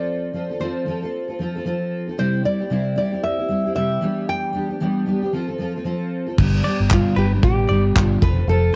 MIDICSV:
0, 0, Header, 1, 6, 480
1, 0, Start_track
1, 0, Tempo, 524476
1, 75, Time_signature, 4, 2, 24, 8
1, 8013, End_track
2, 0, Start_track
2, 0, Title_t, "Clean electric guitar"
2, 0, Program_c, 0, 27
2, 6078, Note_on_c, 0, 74, 71
2, 6216, Note_off_c, 0, 74, 0
2, 6556, Note_on_c, 0, 71, 72
2, 6694, Note_off_c, 0, 71, 0
2, 7035, Note_on_c, 0, 74, 68
2, 7174, Note_off_c, 0, 74, 0
2, 8013, End_track
3, 0, Start_track
3, 0, Title_t, "Nylon-string guitar"
3, 0, Program_c, 1, 24
3, 0, Note_on_c, 1, 74, 74
3, 551, Note_off_c, 1, 74, 0
3, 554, Note_on_c, 1, 72, 60
3, 1480, Note_off_c, 1, 72, 0
3, 2003, Note_on_c, 1, 72, 69
3, 2224, Note_off_c, 1, 72, 0
3, 2245, Note_on_c, 1, 74, 63
3, 2713, Note_off_c, 1, 74, 0
3, 2724, Note_on_c, 1, 74, 63
3, 2961, Note_on_c, 1, 76, 82
3, 2968, Note_off_c, 1, 74, 0
3, 3426, Note_off_c, 1, 76, 0
3, 3437, Note_on_c, 1, 76, 78
3, 3922, Note_off_c, 1, 76, 0
3, 3926, Note_on_c, 1, 79, 83
3, 5567, Note_off_c, 1, 79, 0
3, 6347, Note_on_c, 1, 65, 72
3, 6557, Note_off_c, 1, 65, 0
3, 6575, Note_on_c, 1, 67, 69
3, 6637, Note_off_c, 1, 67, 0
3, 6808, Note_on_c, 1, 67, 88
3, 7348, Note_off_c, 1, 67, 0
3, 7348, Note_on_c, 1, 65, 88
3, 7528, Note_on_c, 1, 71, 90
3, 7544, Note_off_c, 1, 65, 0
3, 7769, Note_off_c, 1, 71, 0
3, 7773, Note_on_c, 1, 69, 85
3, 8013, Note_off_c, 1, 69, 0
3, 8013, End_track
4, 0, Start_track
4, 0, Title_t, "Steel-string acoustic guitar"
4, 0, Program_c, 2, 25
4, 0, Note_on_c, 2, 53, 58
4, 0, Note_on_c, 2, 60, 61
4, 0, Note_on_c, 2, 65, 57
4, 0, Note_on_c, 2, 69, 66
4, 294, Note_off_c, 2, 53, 0
4, 305, Note_on_c, 2, 53, 48
4, 310, Note_off_c, 2, 60, 0
4, 313, Note_off_c, 2, 65, 0
4, 314, Note_on_c, 2, 60, 52
4, 321, Note_off_c, 2, 69, 0
4, 324, Note_on_c, 2, 65, 49
4, 332, Note_on_c, 2, 69, 57
4, 440, Note_off_c, 2, 69, 0
4, 451, Note_on_c, 2, 69, 41
4, 454, Note_off_c, 2, 53, 0
4, 456, Note_off_c, 2, 65, 0
4, 459, Note_off_c, 2, 60, 0
4, 467, Note_on_c, 2, 65, 36
4, 480, Note_on_c, 2, 60, 35
4, 544, Note_off_c, 2, 60, 0
4, 546, Note_on_c, 2, 53, 67
4, 551, Note_off_c, 2, 69, 0
4, 553, Note_off_c, 2, 65, 0
4, 555, Note_on_c, 2, 60, 74
4, 564, Note_on_c, 2, 65, 67
4, 567, Note_on_c, 2, 69, 67
4, 777, Note_off_c, 2, 53, 0
4, 788, Note_off_c, 2, 60, 0
4, 788, Note_on_c, 2, 53, 55
4, 797, Note_off_c, 2, 65, 0
4, 799, Note_on_c, 2, 60, 49
4, 802, Note_off_c, 2, 69, 0
4, 808, Note_on_c, 2, 65, 57
4, 818, Note_on_c, 2, 69, 58
4, 921, Note_off_c, 2, 69, 0
4, 932, Note_on_c, 2, 69, 45
4, 934, Note_off_c, 2, 65, 0
4, 936, Note_off_c, 2, 53, 0
4, 941, Note_off_c, 2, 60, 0
4, 945, Note_on_c, 2, 65, 48
4, 962, Note_on_c, 2, 60, 43
4, 1160, Note_off_c, 2, 69, 0
4, 1171, Note_on_c, 2, 69, 49
4, 1178, Note_off_c, 2, 65, 0
4, 1187, Note_off_c, 2, 60, 0
4, 1189, Note_on_c, 2, 65, 46
4, 1198, Note_on_c, 2, 60, 34
4, 1271, Note_off_c, 2, 60, 0
4, 1271, Note_on_c, 2, 53, 51
4, 1272, Note_off_c, 2, 69, 0
4, 1281, Note_off_c, 2, 65, 0
4, 1282, Note_on_c, 2, 60, 61
4, 1291, Note_on_c, 2, 65, 62
4, 1297, Note_on_c, 2, 69, 66
4, 1410, Note_off_c, 2, 69, 0
4, 1418, Note_off_c, 2, 53, 0
4, 1421, Note_on_c, 2, 69, 50
4, 1423, Note_off_c, 2, 65, 0
4, 1424, Note_off_c, 2, 60, 0
4, 1434, Note_on_c, 2, 65, 43
4, 1451, Note_on_c, 2, 60, 42
4, 1507, Note_off_c, 2, 60, 0
4, 1509, Note_on_c, 2, 53, 66
4, 1515, Note_off_c, 2, 65, 0
4, 1517, Note_off_c, 2, 69, 0
4, 1518, Note_on_c, 2, 60, 73
4, 1526, Note_on_c, 2, 65, 69
4, 1530, Note_on_c, 2, 69, 74
4, 1889, Note_off_c, 2, 69, 0
4, 1897, Note_off_c, 2, 53, 0
4, 1900, Note_on_c, 2, 69, 37
4, 1902, Note_off_c, 2, 60, 0
4, 1903, Note_off_c, 2, 65, 0
4, 1914, Note_on_c, 2, 65, 42
4, 1925, Note_on_c, 2, 60, 32
4, 1993, Note_on_c, 2, 48, 63
4, 1994, Note_off_c, 2, 60, 0
4, 1997, Note_off_c, 2, 69, 0
4, 1999, Note_on_c, 2, 55, 63
4, 2004, Note_off_c, 2, 65, 0
4, 2005, Note_on_c, 2, 60, 75
4, 2011, Note_on_c, 2, 64, 75
4, 2011, Note_on_c, 2, 67, 59
4, 2217, Note_off_c, 2, 55, 0
4, 2228, Note_on_c, 2, 55, 46
4, 2229, Note_off_c, 2, 60, 0
4, 2235, Note_off_c, 2, 48, 0
4, 2238, Note_off_c, 2, 64, 0
4, 2240, Note_on_c, 2, 60, 50
4, 2245, Note_off_c, 2, 67, 0
4, 2249, Note_on_c, 2, 64, 55
4, 2256, Note_on_c, 2, 67, 60
4, 2368, Note_off_c, 2, 67, 0
4, 2377, Note_off_c, 2, 55, 0
4, 2379, Note_on_c, 2, 67, 43
4, 2383, Note_off_c, 2, 60, 0
4, 2383, Note_off_c, 2, 64, 0
4, 2394, Note_on_c, 2, 64, 38
4, 2410, Note_on_c, 2, 60, 33
4, 2471, Note_on_c, 2, 48, 66
4, 2474, Note_off_c, 2, 60, 0
4, 2477, Note_off_c, 2, 64, 0
4, 2477, Note_off_c, 2, 67, 0
4, 2479, Note_on_c, 2, 55, 65
4, 2485, Note_on_c, 2, 60, 69
4, 2488, Note_on_c, 2, 64, 75
4, 2494, Note_on_c, 2, 67, 68
4, 2697, Note_off_c, 2, 55, 0
4, 2708, Note_on_c, 2, 55, 57
4, 2710, Note_off_c, 2, 60, 0
4, 2715, Note_off_c, 2, 48, 0
4, 2721, Note_off_c, 2, 64, 0
4, 2721, Note_on_c, 2, 60, 49
4, 2726, Note_off_c, 2, 67, 0
4, 2732, Note_on_c, 2, 64, 61
4, 2737, Note_on_c, 2, 67, 56
4, 2837, Note_off_c, 2, 67, 0
4, 2848, Note_on_c, 2, 67, 46
4, 2853, Note_off_c, 2, 64, 0
4, 2857, Note_off_c, 2, 55, 0
4, 2864, Note_off_c, 2, 60, 0
4, 2864, Note_on_c, 2, 64, 40
4, 2874, Note_on_c, 2, 60, 41
4, 3081, Note_off_c, 2, 67, 0
4, 3092, Note_on_c, 2, 67, 41
4, 3094, Note_off_c, 2, 64, 0
4, 3105, Note_on_c, 2, 64, 45
4, 3108, Note_off_c, 2, 60, 0
4, 3121, Note_on_c, 2, 60, 34
4, 3190, Note_off_c, 2, 60, 0
4, 3190, Note_on_c, 2, 55, 54
4, 3194, Note_off_c, 2, 67, 0
4, 3200, Note_off_c, 2, 64, 0
4, 3201, Note_on_c, 2, 60, 56
4, 3210, Note_on_c, 2, 64, 53
4, 3220, Note_on_c, 2, 67, 56
4, 3323, Note_off_c, 2, 67, 0
4, 3334, Note_on_c, 2, 67, 47
4, 3338, Note_off_c, 2, 55, 0
4, 3338, Note_off_c, 2, 64, 0
4, 3344, Note_off_c, 2, 60, 0
4, 3349, Note_on_c, 2, 64, 42
4, 3360, Note_on_c, 2, 60, 37
4, 3429, Note_on_c, 2, 48, 57
4, 3430, Note_off_c, 2, 60, 0
4, 3432, Note_off_c, 2, 64, 0
4, 3435, Note_off_c, 2, 67, 0
4, 3435, Note_on_c, 2, 55, 65
4, 3441, Note_on_c, 2, 60, 59
4, 3443, Note_on_c, 2, 64, 71
4, 3447, Note_on_c, 2, 67, 67
4, 3666, Note_off_c, 2, 48, 0
4, 3669, Note_off_c, 2, 55, 0
4, 3669, Note_on_c, 2, 52, 65
4, 3679, Note_off_c, 2, 60, 0
4, 3680, Note_on_c, 2, 55, 68
4, 3681, Note_off_c, 2, 64, 0
4, 3682, Note_on_c, 2, 59, 63
4, 3683, Note_off_c, 2, 67, 0
4, 3686, Note_on_c, 2, 62, 67
4, 3694, Note_on_c, 2, 67, 63
4, 4134, Note_off_c, 2, 55, 0
4, 4145, Note_on_c, 2, 55, 55
4, 4146, Note_off_c, 2, 59, 0
4, 4155, Note_off_c, 2, 52, 0
4, 4155, Note_off_c, 2, 62, 0
4, 4157, Note_on_c, 2, 59, 50
4, 4166, Note_on_c, 2, 62, 53
4, 4167, Note_off_c, 2, 67, 0
4, 4178, Note_on_c, 2, 67, 59
4, 4281, Note_off_c, 2, 67, 0
4, 4292, Note_on_c, 2, 67, 42
4, 4296, Note_off_c, 2, 55, 0
4, 4296, Note_off_c, 2, 62, 0
4, 4302, Note_off_c, 2, 59, 0
4, 4307, Note_on_c, 2, 62, 39
4, 4322, Note_on_c, 2, 59, 33
4, 4394, Note_off_c, 2, 67, 0
4, 4396, Note_on_c, 2, 52, 64
4, 4398, Note_off_c, 2, 59, 0
4, 4401, Note_off_c, 2, 62, 0
4, 4401, Note_on_c, 2, 55, 70
4, 4409, Note_on_c, 2, 59, 66
4, 4414, Note_on_c, 2, 62, 74
4, 4418, Note_on_c, 2, 67, 64
4, 4621, Note_off_c, 2, 55, 0
4, 4631, Note_off_c, 2, 59, 0
4, 4632, Note_on_c, 2, 55, 59
4, 4638, Note_off_c, 2, 52, 0
4, 4641, Note_off_c, 2, 62, 0
4, 4642, Note_on_c, 2, 59, 66
4, 4649, Note_off_c, 2, 67, 0
4, 4652, Note_on_c, 2, 62, 60
4, 4659, Note_on_c, 2, 67, 60
4, 4760, Note_off_c, 2, 67, 0
4, 4771, Note_on_c, 2, 67, 51
4, 4777, Note_off_c, 2, 62, 0
4, 4780, Note_off_c, 2, 55, 0
4, 4785, Note_off_c, 2, 59, 0
4, 4788, Note_on_c, 2, 62, 49
4, 4800, Note_on_c, 2, 59, 42
4, 4874, Note_off_c, 2, 67, 0
4, 4874, Note_on_c, 2, 53, 62
4, 4876, Note_off_c, 2, 59, 0
4, 4879, Note_on_c, 2, 60, 65
4, 4882, Note_off_c, 2, 62, 0
4, 4886, Note_on_c, 2, 65, 63
4, 4894, Note_on_c, 2, 69, 77
4, 4999, Note_off_c, 2, 69, 0
4, 5010, Note_on_c, 2, 69, 52
4, 5016, Note_off_c, 2, 65, 0
4, 5021, Note_off_c, 2, 53, 0
4, 5024, Note_off_c, 2, 60, 0
4, 5027, Note_on_c, 2, 65, 45
4, 5040, Note_on_c, 2, 60, 40
4, 5108, Note_on_c, 2, 53, 64
4, 5109, Note_off_c, 2, 60, 0
4, 5113, Note_off_c, 2, 69, 0
4, 5118, Note_off_c, 2, 65, 0
4, 5120, Note_on_c, 2, 60, 65
4, 5129, Note_on_c, 2, 65, 65
4, 5139, Note_on_c, 2, 69, 65
4, 5244, Note_off_c, 2, 69, 0
4, 5255, Note_on_c, 2, 69, 46
4, 5258, Note_off_c, 2, 53, 0
4, 5260, Note_off_c, 2, 65, 0
4, 5264, Note_off_c, 2, 60, 0
4, 5271, Note_on_c, 2, 65, 49
4, 5284, Note_on_c, 2, 60, 46
4, 5345, Note_off_c, 2, 60, 0
4, 5348, Note_on_c, 2, 53, 71
4, 5350, Note_off_c, 2, 65, 0
4, 5355, Note_off_c, 2, 69, 0
4, 5356, Note_on_c, 2, 60, 78
4, 5361, Note_on_c, 2, 65, 77
4, 5366, Note_on_c, 2, 69, 80
4, 5722, Note_off_c, 2, 69, 0
4, 5733, Note_on_c, 2, 69, 45
4, 5738, Note_off_c, 2, 53, 0
4, 5739, Note_off_c, 2, 65, 0
4, 5742, Note_off_c, 2, 60, 0
4, 5750, Note_on_c, 2, 65, 44
4, 5766, Note_on_c, 2, 60, 43
4, 5834, Note_off_c, 2, 69, 0
4, 5837, Note_on_c, 2, 43, 84
4, 5842, Note_on_c, 2, 50, 80
4, 5843, Note_off_c, 2, 65, 0
4, 5844, Note_on_c, 2, 55, 81
4, 5846, Note_off_c, 2, 60, 0
4, 5850, Note_on_c, 2, 59, 91
4, 5852, Note_on_c, 2, 62, 78
4, 5855, Note_on_c, 2, 67, 80
4, 6060, Note_off_c, 2, 55, 0
4, 6069, Note_off_c, 2, 59, 0
4, 6071, Note_on_c, 2, 55, 61
4, 6078, Note_off_c, 2, 43, 0
4, 6080, Note_on_c, 2, 59, 61
4, 6081, Note_off_c, 2, 50, 0
4, 6081, Note_off_c, 2, 62, 0
4, 6087, Note_off_c, 2, 67, 0
4, 6092, Note_on_c, 2, 62, 69
4, 6097, Note_on_c, 2, 67, 67
4, 6315, Note_off_c, 2, 55, 0
4, 6320, Note_off_c, 2, 59, 0
4, 6321, Note_on_c, 2, 43, 74
4, 6326, Note_off_c, 2, 62, 0
4, 6326, Note_on_c, 2, 50, 71
4, 6328, Note_off_c, 2, 67, 0
4, 6330, Note_on_c, 2, 55, 83
4, 6337, Note_on_c, 2, 59, 77
4, 6338, Note_on_c, 2, 62, 75
4, 6344, Note_on_c, 2, 67, 72
4, 6543, Note_off_c, 2, 55, 0
4, 6552, Note_off_c, 2, 59, 0
4, 6554, Note_on_c, 2, 55, 57
4, 6560, Note_off_c, 2, 43, 0
4, 6562, Note_off_c, 2, 62, 0
4, 6563, Note_off_c, 2, 50, 0
4, 6563, Note_on_c, 2, 59, 65
4, 6572, Note_off_c, 2, 67, 0
4, 6573, Note_on_c, 2, 62, 62
4, 6584, Note_on_c, 2, 67, 63
4, 6691, Note_off_c, 2, 67, 0
4, 6701, Note_off_c, 2, 55, 0
4, 6701, Note_off_c, 2, 62, 0
4, 6702, Note_on_c, 2, 67, 54
4, 6705, Note_off_c, 2, 59, 0
4, 6712, Note_on_c, 2, 62, 51
4, 6723, Note_on_c, 2, 59, 43
4, 6729, Note_on_c, 2, 55, 42
4, 7030, Note_off_c, 2, 55, 0
4, 7039, Note_off_c, 2, 59, 0
4, 7039, Note_off_c, 2, 67, 0
4, 7041, Note_on_c, 2, 55, 64
4, 7043, Note_off_c, 2, 62, 0
4, 7050, Note_on_c, 2, 59, 59
4, 7060, Note_on_c, 2, 62, 61
4, 7068, Note_on_c, 2, 67, 67
4, 7276, Note_on_c, 2, 43, 70
4, 7277, Note_off_c, 2, 55, 0
4, 7279, Note_off_c, 2, 59, 0
4, 7283, Note_on_c, 2, 50, 66
4, 7285, Note_off_c, 2, 62, 0
4, 7287, Note_off_c, 2, 67, 0
4, 7288, Note_on_c, 2, 55, 65
4, 7290, Note_on_c, 2, 59, 61
4, 7296, Note_on_c, 2, 62, 85
4, 7298, Note_on_c, 2, 67, 75
4, 7511, Note_off_c, 2, 55, 0
4, 7514, Note_on_c, 2, 53, 56
4, 7517, Note_off_c, 2, 43, 0
4, 7519, Note_off_c, 2, 59, 0
4, 7521, Note_off_c, 2, 50, 0
4, 7523, Note_on_c, 2, 60, 63
4, 7527, Note_off_c, 2, 62, 0
4, 7528, Note_off_c, 2, 67, 0
4, 7533, Note_on_c, 2, 65, 61
4, 7542, Note_on_c, 2, 69, 58
4, 7643, Note_off_c, 2, 69, 0
4, 7654, Note_on_c, 2, 69, 50
4, 7659, Note_off_c, 2, 65, 0
4, 7660, Note_off_c, 2, 53, 0
4, 7665, Note_off_c, 2, 60, 0
4, 7670, Note_on_c, 2, 65, 48
4, 7685, Note_on_c, 2, 60, 45
4, 7754, Note_off_c, 2, 69, 0
4, 7756, Note_off_c, 2, 60, 0
4, 7756, Note_on_c, 2, 53, 81
4, 7762, Note_off_c, 2, 65, 0
4, 7767, Note_on_c, 2, 60, 69
4, 7771, Note_on_c, 2, 65, 82
4, 7776, Note_on_c, 2, 69, 78
4, 7976, Note_off_c, 2, 53, 0
4, 7991, Note_off_c, 2, 60, 0
4, 7996, Note_off_c, 2, 65, 0
4, 8007, Note_off_c, 2, 69, 0
4, 8013, End_track
5, 0, Start_track
5, 0, Title_t, "Fingered electric bass"
5, 0, Program_c, 3, 33
5, 5841, Note_on_c, 3, 31, 85
5, 6037, Note_off_c, 3, 31, 0
5, 6223, Note_on_c, 3, 31, 80
5, 6420, Note_off_c, 3, 31, 0
5, 6557, Note_on_c, 3, 31, 98
5, 6755, Note_off_c, 3, 31, 0
5, 6799, Note_on_c, 3, 33, 91
5, 6996, Note_off_c, 3, 33, 0
5, 7039, Note_on_c, 3, 31, 85
5, 7236, Note_off_c, 3, 31, 0
5, 7284, Note_on_c, 3, 31, 95
5, 7479, Note_off_c, 3, 31, 0
5, 7523, Note_on_c, 3, 29, 95
5, 7718, Note_off_c, 3, 29, 0
5, 7754, Note_on_c, 3, 29, 107
5, 7953, Note_off_c, 3, 29, 0
5, 8013, End_track
6, 0, Start_track
6, 0, Title_t, "Drums"
6, 5841, Note_on_c, 9, 49, 83
6, 5842, Note_on_c, 9, 36, 108
6, 5933, Note_off_c, 9, 36, 0
6, 5933, Note_off_c, 9, 49, 0
6, 6320, Note_on_c, 9, 39, 86
6, 6324, Note_on_c, 9, 36, 96
6, 6412, Note_off_c, 9, 39, 0
6, 6415, Note_off_c, 9, 36, 0
6, 6800, Note_on_c, 9, 36, 112
6, 6892, Note_off_c, 9, 36, 0
6, 7284, Note_on_c, 9, 36, 101
6, 7289, Note_on_c, 9, 39, 112
6, 7375, Note_off_c, 9, 36, 0
6, 7380, Note_off_c, 9, 39, 0
6, 7524, Note_on_c, 9, 36, 93
6, 7615, Note_off_c, 9, 36, 0
6, 8013, End_track
0, 0, End_of_file